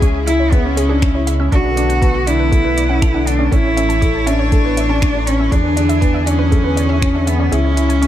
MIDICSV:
0, 0, Header, 1, 7, 480
1, 0, Start_track
1, 0, Tempo, 500000
1, 1458, Time_signature, 4, 2, 24, 8
1, 7749, End_track
2, 0, Start_track
2, 0, Title_t, "Synth arpeggio sound"
2, 0, Program_c, 0, 84
2, 16, Note_on_c, 0, 85, 91
2, 79, Note_off_c, 0, 85, 0
2, 138, Note_on_c, 0, 80, 98
2, 200, Note_off_c, 0, 80, 0
2, 258, Note_on_c, 0, 76, 95
2, 320, Note_off_c, 0, 76, 0
2, 380, Note_on_c, 0, 73, 104
2, 416, Note_off_c, 0, 73, 0
2, 499, Note_on_c, 0, 68, 82
2, 560, Note_off_c, 0, 68, 0
2, 619, Note_on_c, 0, 73, 76
2, 681, Note_off_c, 0, 73, 0
2, 738, Note_on_c, 0, 68, 106
2, 800, Note_off_c, 0, 68, 0
2, 855, Note_on_c, 0, 68, 106
2, 919, Note_off_c, 0, 68, 0
2, 979, Note_on_c, 0, 88, 74
2, 1072, Note_off_c, 0, 88, 0
2, 1098, Note_on_c, 0, 73, 70
2, 1135, Note_off_c, 0, 73, 0
2, 1219, Note_on_c, 0, 76, 104
2, 1311, Note_off_c, 0, 76, 0
2, 1341, Note_on_c, 0, 88, 71
2, 1377, Note_off_c, 0, 88, 0
2, 1458, Note_on_c, 0, 69, 97
2, 1495, Note_off_c, 0, 69, 0
2, 1577, Note_on_c, 0, 71, 70
2, 1639, Note_off_c, 0, 71, 0
2, 1698, Note_on_c, 0, 74, 79
2, 1760, Note_off_c, 0, 74, 0
2, 1815, Note_on_c, 0, 78, 102
2, 1878, Note_off_c, 0, 78, 0
2, 1935, Note_on_c, 0, 81, 101
2, 1998, Note_off_c, 0, 81, 0
2, 2056, Note_on_c, 0, 78, 103
2, 2119, Note_off_c, 0, 78, 0
2, 2175, Note_on_c, 0, 74, 100
2, 2238, Note_off_c, 0, 74, 0
2, 2296, Note_on_c, 0, 71, 100
2, 2334, Note_off_c, 0, 71, 0
2, 2414, Note_on_c, 0, 69, 82
2, 2478, Note_off_c, 0, 69, 0
2, 2538, Note_on_c, 0, 71, 78
2, 2600, Note_off_c, 0, 71, 0
2, 2658, Note_on_c, 0, 74, 79
2, 2720, Note_off_c, 0, 74, 0
2, 2776, Note_on_c, 0, 78, 105
2, 2839, Note_off_c, 0, 78, 0
2, 2894, Note_on_c, 0, 81, 80
2, 2933, Note_off_c, 0, 81, 0
2, 3016, Note_on_c, 0, 78, 97
2, 3079, Note_off_c, 0, 78, 0
2, 3133, Note_on_c, 0, 78, 80
2, 3198, Note_off_c, 0, 78, 0
2, 3254, Note_on_c, 0, 74, 71
2, 3318, Note_off_c, 0, 74, 0
2, 3375, Note_on_c, 0, 69, 91
2, 3414, Note_off_c, 0, 69, 0
2, 3496, Note_on_c, 0, 73, 74
2, 3559, Note_off_c, 0, 73, 0
2, 3614, Note_on_c, 0, 76, 85
2, 3678, Note_off_c, 0, 76, 0
2, 3732, Note_on_c, 0, 81, 104
2, 3797, Note_off_c, 0, 81, 0
2, 3854, Note_on_c, 0, 85, 99
2, 3918, Note_off_c, 0, 85, 0
2, 3975, Note_on_c, 0, 81, 100
2, 4039, Note_off_c, 0, 81, 0
2, 4093, Note_on_c, 0, 76, 110
2, 4158, Note_off_c, 0, 76, 0
2, 4215, Note_on_c, 0, 73, 106
2, 4254, Note_off_c, 0, 73, 0
2, 4337, Note_on_c, 0, 69, 84
2, 4399, Note_off_c, 0, 69, 0
2, 4459, Note_on_c, 0, 73, 80
2, 4521, Note_off_c, 0, 73, 0
2, 4579, Note_on_c, 0, 76, 80
2, 4640, Note_off_c, 0, 76, 0
2, 4696, Note_on_c, 0, 81, 102
2, 4759, Note_off_c, 0, 81, 0
2, 4817, Note_on_c, 0, 85, 83
2, 4855, Note_off_c, 0, 85, 0
2, 4932, Note_on_c, 0, 81, 88
2, 4997, Note_off_c, 0, 81, 0
2, 5055, Note_on_c, 0, 81, 82
2, 5119, Note_off_c, 0, 81, 0
2, 5176, Note_on_c, 0, 76, 77
2, 5239, Note_off_c, 0, 76, 0
2, 5295, Note_on_c, 0, 68, 97
2, 5334, Note_off_c, 0, 68, 0
2, 5414, Note_on_c, 0, 71, 73
2, 5478, Note_off_c, 0, 71, 0
2, 5535, Note_on_c, 0, 74, 81
2, 5598, Note_off_c, 0, 74, 0
2, 5655, Note_on_c, 0, 76, 104
2, 5718, Note_off_c, 0, 76, 0
2, 5772, Note_on_c, 0, 80, 93
2, 5837, Note_off_c, 0, 80, 0
2, 5894, Note_on_c, 0, 76, 104
2, 5958, Note_off_c, 0, 76, 0
2, 6012, Note_on_c, 0, 74, 102
2, 6077, Note_off_c, 0, 74, 0
2, 6132, Note_on_c, 0, 71, 104
2, 6172, Note_off_c, 0, 71, 0
2, 6254, Note_on_c, 0, 68, 85
2, 6318, Note_off_c, 0, 68, 0
2, 6372, Note_on_c, 0, 71, 80
2, 6437, Note_off_c, 0, 71, 0
2, 6494, Note_on_c, 0, 74, 83
2, 6558, Note_off_c, 0, 74, 0
2, 6614, Note_on_c, 0, 76, 107
2, 6678, Note_off_c, 0, 76, 0
2, 6736, Note_on_c, 0, 80, 84
2, 6774, Note_off_c, 0, 80, 0
2, 6860, Note_on_c, 0, 76, 97
2, 6921, Note_off_c, 0, 76, 0
2, 6978, Note_on_c, 0, 76, 81
2, 7040, Note_off_c, 0, 76, 0
2, 7099, Note_on_c, 0, 74, 77
2, 7161, Note_off_c, 0, 74, 0
2, 7218, Note_on_c, 0, 68, 97
2, 7255, Note_off_c, 0, 68, 0
2, 7338, Note_on_c, 0, 73, 71
2, 7400, Note_off_c, 0, 73, 0
2, 7457, Note_on_c, 0, 76, 81
2, 7519, Note_off_c, 0, 76, 0
2, 7577, Note_on_c, 0, 80, 104
2, 7639, Note_off_c, 0, 80, 0
2, 7696, Note_on_c, 0, 85, 102
2, 7749, Note_off_c, 0, 85, 0
2, 7749, End_track
3, 0, Start_track
3, 0, Title_t, "Cello"
3, 0, Program_c, 1, 42
3, 254, Note_on_c, 1, 64, 108
3, 493, Note_on_c, 1, 59, 97
3, 507, Note_off_c, 1, 64, 0
3, 729, Note_on_c, 1, 61, 90
3, 743, Note_off_c, 1, 59, 0
3, 1213, Note_off_c, 1, 61, 0
3, 1452, Note_on_c, 1, 66, 116
3, 2178, Note_on_c, 1, 64, 115
3, 2193, Note_off_c, 1, 66, 0
3, 3139, Note_on_c, 1, 62, 100
3, 3154, Note_off_c, 1, 64, 0
3, 3378, Note_on_c, 1, 64, 115
3, 3393, Note_off_c, 1, 62, 0
3, 4099, Note_on_c, 1, 62, 112
3, 4113, Note_off_c, 1, 64, 0
3, 5053, Note_on_c, 1, 61, 98
3, 5068, Note_off_c, 1, 62, 0
3, 5291, Note_on_c, 1, 62, 106
3, 5305, Note_off_c, 1, 61, 0
3, 6015, Note_on_c, 1, 61, 101
3, 6029, Note_off_c, 1, 62, 0
3, 6985, Note_on_c, 1, 59, 90
3, 6999, Note_off_c, 1, 61, 0
3, 7217, Note_on_c, 1, 61, 109
3, 7231, Note_off_c, 1, 59, 0
3, 7749, Note_off_c, 1, 61, 0
3, 7749, End_track
4, 0, Start_track
4, 0, Title_t, "Felt piano"
4, 0, Program_c, 2, 0
4, 20, Note_on_c, 2, 61, 85
4, 154, Note_off_c, 2, 61, 0
4, 259, Note_on_c, 2, 64, 80
4, 394, Note_off_c, 2, 64, 0
4, 498, Note_on_c, 2, 59, 87
4, 565, Note_off_c, 2, 59, 0
4, 622, Note_on_c, 2, 61, 75
4, 756, Note_off_c, 2, 61, 0
4, 859, Note_on_c, 2, 62, 78
4, 994, Note_off_c, 2, 62, 0
4, 1100, Note_on_c, 2, 64, 74
4, 1234, Note_off_c, 2, 64, 0
4, 1339, Note_on_c, 2, 61, 74
4, 1407, Note_off_c, 2, 61, 0
4, 1459, Note_on_c, 2, 62, 96
4, 1594, Note_off_c, 2, 62, 0
4, 1698, Note_on_c, 2, 62, 78
4, 1833, Note_off_c, 2, 62, 0
4, 1936, Note_on_c, 2, 59, 88
4, 2072, Note_off_c, 2, 59, 0
4, 2179, Note_on_c, 2, 62, 79
4, 2314, Note_off_c, 2, 62, 0
4, 2418, Note_on_c, 2, 57, 93
4, 2486, Note_off_c, 2, 57, 0
4, 2536, Note_on_c, 2, 59, 79
4, 2672, Note_off_c, 2, 59, 0
4, 2775, Note_on_c, 2, 61, 78
4, 2911, Note_off_c, 2, 61, 0
4, 3017, Note_on_c, 2, 62, 73
4, 3152, Note_off_c, 2, 62, 0
4, 3255, Note_on_c, 2, 61, 73
4, 3324, Note_off_c, 2, 61, 0
4, 3379, Note_on_c, 2, 61, 101
4, 3514, Note_off_c, 2, 61, 0
4, 3614, Note_on_c, 2, 61, 78
4, 3751, Note_off_c, 2, 61, 0
4, 3855, Note_on_c, 2, 57, 85
4, 3991, Note_off_c, 2, 57, 0
4, 4095, Note_on_c, 2, 61, 78
4, 4231, Note_off_c, 2, 61, 0
4, 4338, Note_on_c, 2, 57, 87
4, 4406, Note_off_c, 2, 57, 0
4, 4457, Note_on_c, 2, 59, 76
4, 4593, Note_off_c, 2, 59, 0
4, 4696, Note_on_c, 2, 61, 85
4, 4831, Note_off_c, 2, 61, 0
4, 4940, Note_on_c, 2, 62, 74
4, 5074, Note_off_c, 2, 62, 0
4, 5177, Note_on_c, 2, 61, 76
4, 5245, Note_off_c, 2, 61, 0
4, 5296, Note_on_c, 2, 62, 96
4, 5432, Note_off_c, 2, 62, 0
4, 5535, Note_on_c, 2, 62, 82
4, 5671, Note_off_c, 2, 62, 0
4, 5773, Note_on_c, 2, 59, 87
4, 5909, Note_off_c, 2, 59, 0
4, 6017, Note_on_c, 2, 62, 75
4, 6153, Note_off_c, 2, 62, 0
4, 6256, Note_on_c, 2, 57, 90
4, 6324, Note_off_c, 2, 57, 0
4, 6374, Note_on_c, 2, 59, 76
4, 6510, Note_off_c, 2, 59, 0
4, 6610, Note_on_c, 2, 61, 82
4, 6748, Note_off_c, 2, 61, 0
4, 6852, Note_on_c, 2, 62, 73
4, 6989, Note_off_c, 2, 62, 0
4, 7092, Note_on_c, 2, 61, 73
4, 7162, Note_off_c, 2, 61, 0
4, 7214, Note_on_c, 2, 64, 95
4, 7350, Note_off_c, 2, 64, 0
4, 7457, Note_on_c, 2, 64, 80
4, 7593, Note_off_c, 2, 64, 0
4, 7694, Note_on_c, 2, 61, 84
4, 7749, Note_off_c, 2, 61, 0
4, 7749, End_track
5, 0, Start_track
5, 0, Title_t, "Analog synth pad"
5, 0, Program_c, 3, 89
5, 0, Note_on_c, 3, 49, 80
5, 0, Note_on_c, 3, 56, 72
5, 0, Note_on_c, 3, 64, 83
5, 1439, Note_off_c, 3, 49, 0
5, 1439, Note_off_c, 3, 56, 0
5, 1439, Note_off_c, 3, 64, 0
5, 1456, Note_on_c, 3, 57, 70
5, 1457, Note_on_c, 3, 50, 76
5, 1459, Note_on_c, 3, 59, 83
5, 3358, Note_off_c, 3, 50, 0
5, 3359, Note_off_c, 3, 59, 0
5, 3381, Note_on_c, 3, 52, 78
5, 3383, Note_on_c, 3, 73, 86
5, 5258, Note_off_c, 3, 57, 0
5, 5281, Note_off_c, 3, 73, 0
5, 5299, Note_on_c, 3, 50, 72
5, 5299, Note_on_c, 3, 68, 92
5, 7181, Note_off_c, 3, 52, 0
5, 7199, Note_off_c, 3, 50, 0
5, 7199, Note_off_c, 3, 68, 0
5, 7209, Note_on_c, 3, 49, 77
5, 7211, Note_on_c, 3, 56, 68
5, 7211, Note_on_c, 3, 64, 88
5, 7749, Note_off_c, 3, 49, 0
5, 7749, Note_off_c, 3, 56, 0
5, 7749, Note_off_c, 3, 64, 0
5, 7749, End_track
6, 0, Start_track
6, 0, Title_t, "Analog synth bass"
6, 0, Program_c, 4, 38
6, 0, Note_on_c, 4, 37, 84
6, 1434, Note_off_c, 4, 37, 0
6, 1458, Note_on_c, 4, 35, 81
6, 3354, Note_off_c, 4, 35, 0
6, 3378, Note_on_c, 4, 33, 86
6, 5274, Note_off_c, 4, 33, 0
6, 5299, Note_on_c, 4, 40, 80
6, 7195, Note_off_c, 4, 40, 0
6, 7216, Note_on_c, 4, 37, 84
6, 7749, Note_off_c, 4, 37, 0
6, 7749, End_track
7, 0, Start_track
7, 0, Title_t, "Drums"
7, 17, Note_on_c, 9, 36, 102
7, 23, Note_on_c, 9, 42, 47
7, 113, Note_off_c, 9, 36, 0
7, 119, Note_off_c, 9, 42, 0
7, 264, Note_on_c, 9, 42, 67
7, 360, Note_off_c, 9, 42, 0
7, 498, Note_on_c, 9, 36, 114
7, 504, Note_on_c, 9, 42, 42
7, 594, Note_off_c, 9, 36, 0
7, 600, Note_off_c, 9, 42, 0
7, 743, Note_on_c, 9, 42, 67
7, 839, Note_off_c, 9, 42, 0
7, 979, Note_on_c, 9, 36, 110
7, 982, Note_on_c, 9, 26, 67
7, 982, Note_on_c, 9, 42, 40
7, 1075, Note_off_c, 9, 36, 0
7, 1078, Note_off_c, 9, 26, 0
7, 1078, Note_off_c, 9, 42, 0
7, 1222, Note_on_c, 9, 42, 68
7, 1318, Note_off_c, 9, 42, 0
7, 1458, Note_on_c, 9, 36, 107
7, 1462, Note_on_c, 9, 42, 41
7, 1554, Note_off_c, 9, 36, 0
7, 1558, Note_off_c, 9, 42, 0
7, 1702, Note_on_c, 9, 42, 65
7, 1798, Note_off_c, 9, 42, 0
7, 1822, Note_on_c, 9, 42, 28
7, 1918, Note_off_c, 9, 42, 0
7, 1938, Note_on_c, 9, 36, 99
7, 1943, Note_on_c, 9, 42, 43
7, 2034, Note_off_c, 9, 36, 0
7, 2039, Note_off_c, 9, 42, 0
7, 2182, Note_on_c, 9, 42, 62
7, 2278, Note_off_c, 9, 42, 0
7, 2419, Note_on_c, 9, 36, 105
7, 2424, Note_on_c, 9, 42, 44
7, 2515, Note_off_c, 9, 36, 0
7, 2520, Note_off_c, 9, 42, 0
7, 2665, Note_on_c, 9, 42, 61
7, 2761, Note_off_c, 9, 42, 0
7, 2898, Note_on_c, 9, 36, 113
7, 2902, Note_on_c, 9, 26, 71
7, 2902, Note_on_c, 9, 42, 42
7, 2994, Note_off_c, 9, 36, 0
7, 2998, Note_off_c, 9, 26, 0
7, 2998, Note_off_c, 9, 42, 0
7, 3142, Note_on_c, 9, 42, 64
7, 3238, Note_off_c, 9, 42, 0
7, 3379, Note_on_c, 9, 36, 97
7, 3383, Note_on_c, 9, 42, 41
7, 3475, Note_off_c, 9, 36, 0
7, 3479, Note_off_c, 9, 42, 0
7, 3623, Note_on_c, 9, 42, 60
7, 3719, Note_off_c, 9, 42, 0
7, 3743, Note_on_c, 9, 42, 27
7, 3839, Note_off_c, 9, 42, 0
7, 3859, Note_on_c, 9, 36, 90
7, 3861, Note_on_c, 9, 42, 43
7, 3955, Note_off_c, 9, 36, 0
7, 3957, Note_off_c, 9, 42, 0
7, 4101, Note_on_c, 9, 42, 60
7, 4197, Note_off_c, 9, 42, 0
7, 4339, Note_on_c, 9, 36, 106
7, 4340, Note_on_c, 9, 42, 41
7, 4435, Note_off_c, 9, 36, 0
7, 4436, Note_off_c, 9, 42, 0
7, 4583, Note_on_c, 9, 42, 59
7, 4679, Note_off_c, 9, 42, 0
7, 4819, Note_on_c, 9, 36, 102
7, 4821, Note_on_c, 9, 26, 68
7, 4821, Note_on_c, 9, 42, 37
7, 4915, Note_off_c, 9, 36, 0
7, 4917, Note_off_c, 9, 26, 0
7, 4917, Note_off_c, 9, 42, 0
7, 5062, Note_on_c, 9, 42, 61
7, 5158, Note_off_c, 9, 42, 0
7, 5298, Note_on_c, 9, 36, 93
7, 5301, Note_on_c, 9, 42, 42
7, 5394, Note_off_c, 9, 36, 0
7, 5397, Note_off_c, 9, 42, 0
7, 5540, Note_on_c, 9, 42, 60
7, 5636, Note_off_c, 9, 42, 0
7, 5659, Note_on_c, 9, 42, 29
7, 5755, Note_off_c, 9, 42, 0
7, 5778, Note_on_c, 9, 36, 89
7, 5780, Note_on_c, 9, 42, 43
7, 5874, Note_off_c, 9, 36, 0
7, 5876, Note_off_c, 9, 42, 0
7, 6021, Note_on_c, 9, 42, 57
7, 6117, Note_off_c, 9, 42, 0
7, 6258, Note_on_c, 9, 36, 101
7, 6261, Note_on_c, 9, 42, 40
7, 6354, Note_off_c, 9, 36, 0
7, 6357, Note_off_c, 9, 42, 0
7, 6502, Note_on_c, 9, 42, 57
7, 6598, Note_off_c, 9, 42, 0
7, 6738, Note_on_c, 9, 36, 103
7, 6743, Note_on_c, 9, 26, 73
7, 6743, Note_on_c, 9, 42, 38
7, 6834, Note_off_c, 9, 36, 0
7, 6839, Note_off_c, 9, 26, 0
7, 6839, Note_off_c, 9, 42, 0
7, 6983, Note_on_c, 9, 42, 61
7, 7079, Note_off_c, 9, 42, 0
7, 7224, Note_on_c, 9, 42, 42
7, 7320, Note_off_c, 9, 42, 0
7, 7462, Note_on_c, 9, 42, 59
7, 7558, Note_off_c, 9, 42, 0
7, 7583, Note_on_c, 9, 42, 30
7, 7679, Note_off_c, 9, 42, 0
7, 7704, Note_on_c, 9, 42, 40
7, 7749, Note_off_c, 9, 42, 0
7, 7749, End_track
0, 0, End_of_file